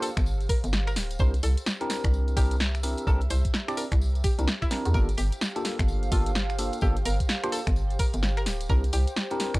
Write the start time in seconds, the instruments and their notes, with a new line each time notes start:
Already playing: ambient pad G4 C5 F5
0.02 synth pluck A4, open hi-hat, tambourine
0.17 fm bass G1, finger snap, kick, closed hi-hat, tambourine
0.26 tambourine
0.40 closed hi-hat, tambourine
0.49 synth pluck A#4, kick, open hi-hat, tambourine
0.64 fm bass G1, closed hi-hat, tambourine
0.73 snare, tambourine
0.87 synth pluck A#4, finger snap, closed hi-hat, tambourine
0.96 fm bass D1, snare, open hi-hat, tambourine
1.11 closed hi-hat, tambourine
1.19 fm bass C2, tine electric piano C4 D4 E4 G4 A#4, ambient pad G4, synth pluck C5, kick, tambourine
1.34 closed hi-hat, tambourine
1.43 fm bass C2, synth pluck A4, open hi-hat, tambourine
1.57 closed hi-hat, tambourine
1.66 snare, tambourine
1.81 tine electric piano C4 D4 E4 G4 A#4, closed hi-hat, tambourine
1.90 snare, open hi-hat, tambourine
2.04 fm bass C2, ambient pad E5, finger snap, kick, closed hi-hat, tambourine
2.14 tambourine
2.28 closed hi-hat, tambourine
2.37 fm bass C2, tine electric piano C4 D4 E4 G4 A#4, synth pluck G4, kick, open hi-hat, tambourine
2.51 closed hi-hat, tambourine
2.60 snare, tambourine
2.75 finger snap, closed hi-hat, tambourine
2.83 tine electric piano C4 D4 E4 G4 A#4, open hi-hat, tambourine
2.97 closed hi-hat, tambourine
3.07 fm bass C2, tine electric piano C4 D4 E4 G4 A#4, synth pluck A4, kick, tambourine
3.21 closed hi-hat, tambourine
3.30 fm bass C2, synth pluck C5, open hi-hat, tambourine
3.45 kick, closed hi-hat, tambourine
3.54 snare, tambourine
3.68 tine electric piano C4 D4 E4 G4 D5, finger snap, closed hi-hat, tambourine
3.77 synth pluck A#4, open hi-hat, tambourine
3.92 fm bass C2, finger snap, kick, closed hi-hat, tambourine
4.01 tambourine
4.15 closed hi-hat, tambourine
4.24 synth pluck G4, kick, open hi-hat, tambourine
4.39 fm bass C2, tine electric piano C4 D4 E4 G4 A#4, closed hi-hat, tambourine
4.48 snare, tambourine
4.62 synth pluck E4, finger snap, kick, closed hi-hat, tambourine
4.71 tine electric piano C4 D4 E4 G4 A#4, snare, open hi-hat, tambourine
4.85 fm bass E2, closed hi-hat, tambourine
4.94 fm bass G1, tine electric piano A#3 D4 F4 G4 A4, synth pluck A#4, kick, tambourine
5.09 ambient pad F5, closed hi-hat, tambourine
5.18 fm bass G1, synth pluck G4, open hi-hat, tambourine
5.32 closed hi-hat, tambourine
5.41 snare, tambourine
5.49 ambient pad C5
5.56 tine electric piano A#3 D4 F4 G4 A4, closed hi-hat, tambourine
5.65 snare, open hi-hat, tambourine
5.79 fm bass G1, finger snap, kick, closed hi-hat, tambourine
5.88 tambourine
6.03 closed hi-hat, tambourine
6.12 fm bass G1, tine electric piano A#3 D4 F4 G4 A4, synth pluck F4, kick, open hi-hat, tambourine
6.26 closed hi-hat, tambourine
6.35 snare, tambourine
6.50 finger snap, closed hi-hat, tambourine
6.59 tine electric piano A#3 D4 F4 G4 A4, open hi-hat, tambourine
6.73 closed hi-hat, tambourine
6.81 fm bass G1, tine electric piano A#3 D4 F4 G4 A4, synth pluck G4, kick, tambourine
6.96 closed hi-hat, tambourine
7.05 fm bass G1, synth pluck A#4, open hi-hat, tambourine
7.20 kick, closed hi-hat, tambourine
7.29 snare, tambourine
7.44 tine electric piano A#3 D4 F4 G4 C5, finger snap, closed hi-hat, tambourine
7.52 synth pluck A4, open hi-hat, tambourine
7.67 fm bass G1, finger snap, kick, closed hi-hat, tambourine
7.76 tambourine
7.90 closed hi-hat, tambourine
7.99 synth pluck A#4, kick, open hi-hat, tambourine
8.13 fm bass G1, closed hi-hat, tambourine
8.23 snare, tambourine
8.37 synth pluck A#4, finger snap, closed hi-hat, tambourine
8.46 fm bass D1, snare, open hi-hat, tambourine
8.61 closed hi-hat, tambourine
8.69 fm bass C2, tine electric piano C4 D4 E4 G4 A#4, synth pluck A#4, kick, tambourine
8.84 closed hi-hat, tambourine
8.93 fm bass C2, synth pluck G4, open hi-hat, tambourine
9.07 closed hi-hat, tambourine
9.16 snare, tambourine
9.30 tine electric piano C4 D4 E4 G4 A#4, closed hi-hat, tambourine
9.40 snare, open hi-hat, tambourine
9.54 fm bass C2, finger snap, kick, closed hi-hat, tambourine